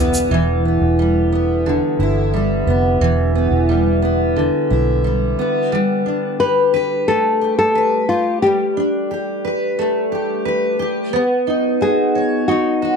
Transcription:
Already playing: fingered electric bass E1, steel-string acoustic guitar D3 E3 G3 B3 E4, grand piano G3 D4 E4 B4
0.14 shaker
0.31 fingered electric bass E1, steel-string acoustic guitar E3
0.65 steel-string acoustic guitar B3
0.81 fingered electric bass E1
0.99 steel-string acoustic guitar G3
1.32 steel-string acoustic guitar B3
1.66 steel-string acoustic guitar D3
1.99 fingered electric bass G1, steel-string acoustic guitar E4
2.34 steel-string acoustic guitar G3
2.67 fingered electric bass F1, steel-string acoustic guitar B3
3.01 fingered electric bass E1, steel-string acoustic guitar E3
3.35 steel-string acoustic guitar B3
3.51 fingered electric bass E1
3.69 steel-string acoustic guitar G3
4.02 steel-string acoustic guitar B3
4.36 steel-string acoustic guitar D3
4.70 fingered electric bass B1, steel-string acoustic guitar E4
5.04 steel-string acoustic guitar G3
5.39 steel-string acoustic guitar B3
5.72 steel-string acoustic guitar G3
6.06 steel-string acoustic guitar D4
6.40 steel-string acoustic guitar G4, nylon-string guitar B4
6.74 steel-string acoustic guitar B4
7.08 steel-string acoustic guitar A3, nylon-string guitar A4
7.41 steel-string acoustic guitar G4
7.59 nylon-string guitar A4
7.75 steel-string acoustic guitar B4
8.09 nylon-string guitar F4, steel-string acoustic guitar G4
8.42 steel-string acoustic guitar G3, nylon-string guitar G4
8.77 steel-string acoustic guitar D4
9.11 steel-string acoustic guitar G4
9.45 steel-string acoustic guitar B4
9.79 steel-string acoustic guitar A3
10.12 steel-string acoustic guitar G4
10.45 steel-string acoustic guitar B4
10.79 steel-string acoustic guitar G4
11.13 steel-string acoustic guitar B3
11.47 steel-string acoustic guitar D#4
11.81 steel-string acoustic guitar F#4, nylon-string guitar G#4
12.15 steel-string acoustic guitar C#5
12.48 steel-string acoustic guitar D#4, nylon-string guitar F#4
12.82 steel-string acoustic guitar F#4

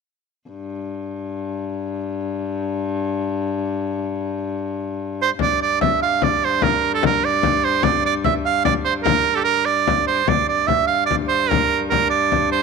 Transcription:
0.49 viola da gamba G2
5.22 shawm C5
5.39 viola da gamba G2, shawm D5, frame drum
5.62 shawm D5
5.81 shawm E5, frame drum
6.02 shawm F5, frame drum
6.22 shawm D5, frame drum
6.45 shawm C5
6.62 shawm A#4, frame drum
6.94 shawm A4
7.03 shawm A#4, frame drum
7.23 shawm D5, frame drum
7.43 frame drum
7.64 shawm C5
7.83 shawm D5, frame drum
8.06 shawm D5
8.24 shawm E5, frame drum
8.45 shawm F5, frame drum
8.65 shawm D5, frame drum
8.85 shawm C5
9.03 shawm A#4, frame drum
9.35 shawm G4 A4
9.44 shawm A#4
9.65 shawm D5
9.87 frame drum
10.07 shawm C5, frame drum
10.28 viola da gamba G2, shawm D5, frame drum
10.48 shawm D5
10.67 shawm E5, frame drum
10.87 shawm F5, frame drum
11.06 shawm D5
11.11 frame drum
11.28 shawm C5
11.49 shawm A#4, frame drum
11.90 shawm A#4, frame drum
12.10 shawm D5, frame drum
12.32 frame drum
12.52 shawm C5

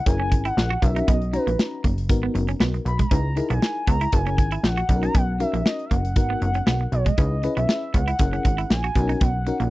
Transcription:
0.06 analog synth bass F#1, fm electric piano C#4 E4 G#4 A#4, soft synth lead G#5, kick, closed hi-hat
0.20 clean electric guitar C#4
0.32 analog synth bass G#1, muted clean electric guitar stroke, kick, closed hi-hat
0.45 clean electric guitar E4, soft synth lead F#5, closed hi-hat
0.57 analog synth bass A#1, snare
0.70 clean electric guitar F#4
0.82 analog synth bass B1, fm electric piano C#4 D#4 F#4 A#4, soft synth lead E5, muted clean electric guitar stroke, kick, closed hi-hat
0.96 clean electric guitar D#4, closed hi-hat
1.07 analog synth bass B1, clean electric guitar B3, soft synth lead D#5, kick, closed hi-hat
1.22 closed hi-hat
1.33 fm electric piano C#4 D#4 F#4 A#5, soft synth lead B4, muted clean electric guitar stroke, closed hi-hat
1.47 analog synth bass A#1, clean electric guitar A#3, closed hi-hat
1.59 snare
1.84 analog synth bass F#1, clean electric guitar A#3, kick, closed hi-hat
1.98 closed hi-hat
2.09 analog synth bass G#1, fm electric piano B3 D#4 F#4 A#4, kick, closed hi-hat
2.23 clean electric guitar B3
2.35 analog synth bass F#1, muted clean electric guitar stroke, closed hi-hat
2.48 clean electric guitar C#4, closed hi-hat
2.60 analog synth bass B1, clean electric guitar B3, snare
2.74 muted clean electric guitar stroke, closed hi-hat
2.85 analog synth bass B1, soft synth lead B5, closed hi-hat
2.99 clean electric guitar G#3, soft synth lead A#5, kick, closed hi-hat
3.11 analog synth bass C#2, clean electric guitar C#4, fm electric piano D#4 E4 G#4 B4, kick, closed hi-hat
3.36 fm electric piano D#4 E4 G#4 A#4, muted clean electric guitar stroke, closed hi-hat
3.50 analog synth bass B1, clean electric guitar B3, soft synth lead G#5, closed hi-hat
3.62 muted clean electric guitar stroke, snare
3.87 analog synth bass C#2, clean electric guitar B3, soft synth lead A#5, kick, closed hi-hat
4.01 clean electric guitar E4, closed hi-hat
4.12 analog synth bass F#1, fm electric piano C#4 E4 G#4 A#4, soft synth lead G#5, kick, closed hi-hat
4.26 clean electric guitar C#4, closed hi-hat
4.38 analog synth bass G#1, muted clean electric guitar stroke, kick, closed hi-hat
4.51 clean electric guitar E4, closed hi-hat
4.63 analog synth bass A#1, soft synth lead F#5, snare
4.77 clean electric guitar F#4, closed hi-hat
4.89 analog synth bass B1, fm electric piano C#4 D#4 F#4 A4, muted clean electric guitar stroke, kick, closed hi-hat
4.96 fm electric piano A#4
5.03 clean electric guitar D#4, soft synth lead A#5, closed hi-hat
5.15 analog synth bass B1, clean electric guitar B3, soft synth lead F#5, kick, closed hi-hat
5.40 fm electric piano C#4 D#4 F#4 A#4, soft synth lead E5, muted clean electric guitar stroke, closed hi-hat
5.53 analog synth bass A#1, clean electric guitar A#3, closed hi-hat
5.66 soft synth lead D#5, snare
5.79 closed hi-hat
5.85 soft synth lead F5
5.91 analog synth bass F#1, clean electric guitar A#3, soft synth lead F#5, kick, closed hi-hat
6.05 closed hi-hat
6.16 analog synth bass G#1, fm electric piano B3 D#4 F#4 A#4, kick, closed hi-hat
6.30 clean electric guitar B3
6.42 analog synth bass F#1, muted clean electric guitar stroke, closed hi-hat
6.54 clean electric guitar C#4, closed hi-hat
6.67 analog synth bass B1, clean electric guitar B3, snare
6.81 muted clean electric guitar stroke
6.92 analog synth bass B1, soft synth lead C#5, closed hi-hat
7.06 clean electric guitar G#3, soft synth lead D#5, kick, closed hi-hat
7.18 analog synth bass C#2, clean electric guitar C#4, fm electric piano D#4 E4 G#4 B4, kick, closed hi-hat
7.43 fm electric piano C#4 E4 G#4 B4, muted clean electric guitar stroke, closed hi-hat
7.57 analog synth bass B1, clean electric guitar B3, soft synth lead E5, closed hi-hat
7.69 muted clean electric guitar stroke, snare
7.94 analog synth bass C#2, clean electric guitar B3, soft synth lead F#5, kick, closed hi-hat
8.08 clean electric guitar E4, closed hi-hat
8.19 analog synth bass F#1, fm electric piano C#4 E4 G#4 A#4, kick, closed hi-hat
8.33 clean electric guitar C#4, closed hi-hat
8.45 analog synth bass G#1, muted clean electric guitar stroke, kick, closed hi-hat
8.58 clean electric guitar E4, closed hi-hat
8.70 analog synth bass A#1, soft synth lead G#5, snare
8.84 clean electric guitar F#4, closed hi-hat
8.95 analog synth bass B1, fm electric piano C#4 D#4 F#4 A#4, muted clean electric guitar stroke, kick, closed hi-hat
9.09 clean electric guitar D#4, closed hi-hat
9.21 analog synth bass B1, clean electric guitar B3, soft synth lead F#5, kick, closed hi-hat
9.46 fm electric piano C#4 D#4 F#4 A#4, muted clean electric guitar stroke, closed hi-hat
9.60 analog synth bass A#1, clean electric guitar A#3, closed hi-hat

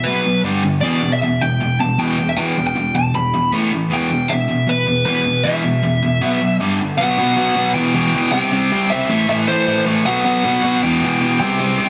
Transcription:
0.04 overdriven electric guitar B2 F#3, lead electric guitar B4
0.08 overdriven electric guitar B3
0.25 overdriven electric guitar B2 F#3
0.44 overdriven electric guitar G2 D3 G3
0.63 overdriven electric guitar G2 D3
0.81 overdriven electric guitar E2 B2 E3, lead electric guitar D5
1.03 overdriven electric guitar E2 B2
1.12 lead electric guitar E5
1.22 overdriven electric guitar E2 B2, lead electric guitar E5
1.41 overdriven electric guitar E2 B2, lead electric guitar G5
1.60 overdriven electric guitar E2 B2
1.80 overdriven electric guitar E2 B2, lead electric guitar A5
1.98 overdriven electric guitar E2 B2 E3, lead electric guitar G5
2.19 overdriven electric guitar E2 B2
2.29 lead electric guitar E5
2.36 overdriven electric guitar E2 B2 E3, lead electric guitar G5
2.57 overdriven electric guitar E2 B2
2.67 lead electric guitar G5
2.76 overdriven electric guitar E2 B2
2.95 overdriven electric guitar E2 B2, lead electric guitar A5
3.14 overdriven electric guitar E2 B2, lead electric guitar B5
3.34 overdriven electric guitar E2 B2
3.52 overdriven electric guitar A2 E3 A3
3.72 overdriven electric guitar A2 E3
3.90 overdriven electric guitar E2 B2 E3, lead electric guitar G5
4.10 overdriven electric guitar E2 B2
4.29 overdriven electric guitar E2 B2, lead electric guitar E5
4.49 overdriven electric guitar E2 B2
4.67 overdriven electric guitar E2 B2, lead electric guitar B4
4.87 overdriven electric guitar E2 B2
5.06 overdriven electric guitar E2 B2 E3, lead electric guitar B4
5.26 overdriven electric guitar E2 B2
5.44 overdriven electric guitar E2 B2 E3, lead electric guitar E5
5.64 overdriven electric guitar E2 B2
5.83 overdriven electric guitar E2 B2
6.03 overdriven electric guitar E2 B2
6.21 overdriven electric guitar B2 F#3 B3
6.41 overdriven electric guitar B2 F#3
6.60 overdriven electric guitar G2 D3 G3
6.80 overdriven electric guitar G2 D3
6.98 overdriven electric guitar B2 F#3 B3, lead electric guitar F#5
7.18 overdriven electric guitar B2 F#3 B3
7.36 overdriven electric guitar B2 F#3 B3
7.56 overdriven electric guitar B2 F#3 B3
7.74 overdriven electric guitar E2 B2 E3, lead electric guitar G5
7.94 overdriven electric guitar E2 B2 E3
8.14 overdriven electric guitar E2 B2 E3
8.32 overdriven electric guitar C3 G3 C4, lead electric guitar G5
8.51 overdriven electric guitar C3 G3 C4
8.72 overdriven electric guitar C3 G3 C4
8.90 overdriven electric guitar C3 G3 C4, lead electric guitar E5
9.09 overdriven electric guitar A2 E3 A3
9.28 overdriven electric guitar A2 E3 A3, lead electric guitar E5
9.47 overdriven electric guitar A2 E3 A3, lead electric guitar C5
9.67 overdriven electric guitar A2 E3 A3
9.86 overdriven electric guitar A2 E3 A3
10.04 overdriven electric guitar B2 F#3 B3, lead electric guitar F#5
10.24 overdriven electric guitar B2 F#3 B3
10.44 overdriven electric guitar B2 F#3 B3
10.63 overdriven electric guitar B2 F#3 B3
10.82 overdriven electric guitar E2 B2 E3, lead electric guitar G5
11.02 overdriven electric guitar E2 B2 E3
11.21 overdriven electric guitar E2 B2 E3
11.40 overdriven electric guitar C3 G3 C4, lead electric guitar G5
11.60 overdriven electric guitar C3 G3 C4
11.79 overdriven electric guitar C3 G3 C4

